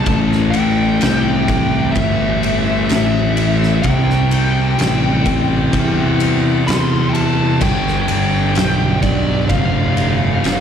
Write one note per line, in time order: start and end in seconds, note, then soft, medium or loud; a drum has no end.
0.00 0.10 C4 medium
0.04 0.51 A1 loud
0.04 1.46 A2 loud
0.04 0.18 A5 loud
0.04 kick loud
0.04 ride loud
0.09 1.50 E3 loud
0.09 1.47 A3 loud
0.32 snare soft
0.51 1.90 G5 loud
0.51 ride medium
0.55 0.99 A1 medium
1.01 1.93 C2 loud
1.01 snare loud
1.01 ride loud
1.48 3.84 A2 medium
1.48 3.83 E3 medium
1.48 3.82 A3 medium
1.48 kick loud
1.48 ride medium
1.92 2.86 G1 loud
1.92 2.84 E5 medium
1.92 kick medium
1.92 ride loud
2.43 ride medium
2.85 3.78 E5 medium
2.85 ride loud
2.91 3.81 A1 medium
2.91 snare loud
3.37 ride medium
3.63 snare soft
3.82 4.75 C2 loud
3.82 5.23 C3 medium
3.82 6.75 G5 loud
3.82 kick loud
3.82 ride loud
3.86 5.28 G3 medium
3.86 5.25 C4 loud
4.10 snare soft
4.31 ride medium
4.79 5.70 A1 medium
4.79 snare loud
4.79 ride loud
5.25 7.63 G3 medium
5.25 7.59 C4 medium
5.25 kick loud
5.25 ride medium
5.30 7.61 C3 medium
5.73 6.64 E2 loud
5.73 kick medium
5.73 ride loud
6.20 ride medium
6.67 7.58 E2 medium
6.67 7.09 C6 loud
6.67 snare loud
6.67 ride loud
7.09 7.14 G5 medium
7.14 7.62 A5 medium
7.14 ride medium
7.61 8.06 G1 loud
7.61 9.00 G2 medium
7.61 9.01 D3 loud
7.61 8.06 G5 medium
7.61 kick loud
7.61 crash loud
7.66 9.01 G3 loud
7.88 snare soft
8.08 8.54 G1 loud
8.08 8.99 G5 loud
8.08 ride medium
8.55 9.47 B1 medium
8.55 snare loud
8.55 ride loud
9.02 10.60 G2 medium
9.02 10.60 D3 medium
9.02 10.60 G3 medium
9.02 9.49 D5 medium
9.02 kick medium
9.02 ride medium
9.49 10.40 F1 loud
9.49 10.60 F5 medium
9.49 kick medium
9.49 ride medium
9.97 ride medium
10.44 10.60 G1 medium
10.44 snare loud
10.44 ride loud